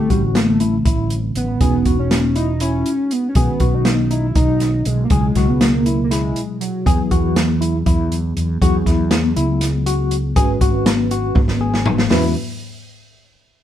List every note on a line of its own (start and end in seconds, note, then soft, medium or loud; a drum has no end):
0.00 1.57 D3 medium
0.00 1.57 G3 medium
0.00 1.57 C4 medium
0.00 1.57 E4 medium
0.10 0.81 A1 medium
0.10 0.22 G3 medium
0.10 0.39 F#4 medium
0.10 kick medium
0.10 closed hi-hat medium
0.35 0.88 A3 medium
0.35 snare medium
0.35 closed hi-hat medium
0.60 0.75 E4 medium
0.60 closed hi-hat medium
0.85 1.32 A1 medium
0.85 1.15 E4 medium
0.85 kick medium
0.85 closed hi-hat medium
1.10 closed hi-hat medium
1.35 1.59 A1 medium
1.35 1.59 B3 medium
1.35 closed hi-hat medium
1.61 1.84 E1 medium
1.61 3.32 G#3 soft
1.61 1.96 B3 loud
1.61 3.32 C#4 medium
1.61 3.32 D#4 medium
1.61 3.32 F#4 medium
1.61 1.75 G#4 medium
1.61 kick medium
1.61 closed hi-hat medium
1.85 2.82 E1 medium
1.85 2.15 F#4 medium
1.85 kick medium
1.85 closed hi-hat medium
1.99 2.38 C#4 medium
2.11 snare loud
2.11 closed hi-hat medium
2.36 2.61 D#4 medium
2.36 2.50 E4 medium
2.36 closed hi-hat medium
2.60 3.13 C#4 loud
2.60 2.90 E4 medium
2.60 closed hi-hat medium
2.86 closed hi-hat medium
3.11 3.28 B3 medium
3.11 closed hi-hat medium
3.29 3.38 C#4 medium
3.35 3.47 B1 medium
3.35 5.08 D#3 medium
3.35 5.08 G#3 medium
3.35 3.76 B3 loud
3.35 5.08 C#4 soft
3.35 5.08 F#4 medium
3.35 3.51 G#4 medium
3.35 kick medium
3.35 closed hi-hat medium
3.60 4.32 B1 medium
3.60 3.90 F#4 medium
3.60 kick medium
3.60 closed hi-hat medium
3.74 4.12 D#4 loud
3.85 snare loud
3.85 closed hi-hat medium
4.11 4.25 D#4 medium
4.11 4.37 E4 loud
4.11 closed hi-hat medium
4.35 4.82 B1 medium
4.35 4.88 D#4 loud
4.35 4.65 D#4 medium
4.35 kick medium
4.35 closed hi-hat medium
4.60 snare soft
4.60 closed hi-hat medium
4.85 5.09 B1 medium
4.85 5.04 G#3 medium
4.85 closed hi-hat medium
5.04 5.13 A#3 medium
5.10 5.34 C#2 medium
5.10 6.83 B2 medium
5.10 6.83 F#3 medium
5.10 5.50 G#3 loud
5.10 6.83 E4 medium
5.10 6.83 G#4 medium
5.10 5.26 G#4 medium
5.10 kick medium
5.10 closed hi-hat medium
5.35 6.32 C#2 medium
5.35 5.66 F#4 medium
5.35 kick medium
5.35 snare soft
5.35 closed hi-hat medium
5.48 5.63 B3 medium
5.61 6.03 A#3 loud
5.61 snare loud
5.61 closed hi-hat medium
5.86 6.01 E4 medium
5.86 closed hi-hat medium
6.04 6.13 A#3 medium
6.11 6.60 G#3 loud
6.11 6.40 E4 medium
6.11 snare soft
6.11 closed hi-hat medium
6.36 closed hi-hat medium
6.60 6.87 F#3 medium
6.60 closed hi-hat medium
6.86 6.98 E2 medium
6.86 8.11 E3 medium
6.86 8.58 F#3 medium
6.86 8.58 B3 medium
6.86 8.58 E4 medium
6.86 7.01 G#4 medium
6.86 8.58 G#4 medium
6.86 kick loud
6.86 closed hi-hat medium
7.11 7.82 E2 medium
7.11 7.41 F#4 medium
7.11 kick medium
7.11 closed hi-hat medium
7.36 snare medium
7.36 closed hi-hat medium
7.61 7.76 E4 medium
7.61 closed hi-hat medium
7.86 8.33 E2 medium
7.86 8.16 E4 medium
7.86 kick medium
7.86 closed hi-hat medium
8.12 closed hi-hat medium
8.37 8.60 E2 medium
8.37 closed hi-hat medium
8.61 8.85 E2 medium
8.61 10.33 F#3 medium
8.61 10.33 B3 medium
8.61 10.33 E4 medium
8.61 8.76 F#4 medium
8.61 10.33 G#4 medium
8.61 kick medium
8.61 closed hi-hat medium
8.86 9.33 E2 medium
8.86 9.16 E4 medium
8.86 kick medium
8.86 snare soft
8.86 closed hi-hat medium
9.11 snare loud
9.11 closed hi-hat medium
9.36 10.32 C#2 medium
9.36 9.66 E4 medium
9.36 closed hi-hat medium
9.61 snare soft
9.61 closed hi-hat medium
9.86 10.16 F#4 medium
9.86 closed hi-hat medium
10.11 closed hi-hat medium
10.36 10.59 G#1 medium
10.36 12.08 G#3 medium
10.36 12.08 C#4 medium
10.36 12.08 F#4 medium
10.36 10.51 G#4 medium
10.36 12.08 B4 medium
10.36 kick loud
10.36 closed hi-hat medium
10.61 11.32 G#1 medium
10.61 10.91 F#4 medium
10.61 kick medium
10.61 closed hi-hat medium
10.86 snare loud
10.86 closed hi-hat medium
11.11 11.41 F#4 medium
11.11 closed hi-hat medium
11.35 12.07 G#1 loud
11.35 kick loud
11.35 high tom medium
11.48 snare medium
11.61 11.90 G#4 medium
11.74 snare medium
11.86 floor tom loud
11.98 snare medium
12.10 12.34 E2 medium
12.10 12.34 G#3 medium
12.10 12.34 C#4 medium
12.10 12.34 E4 medium
12.10 12.34 F#4 medium
12.10 12.34 B4 medium
12.10 snare medium
12.10 open hi-hat medium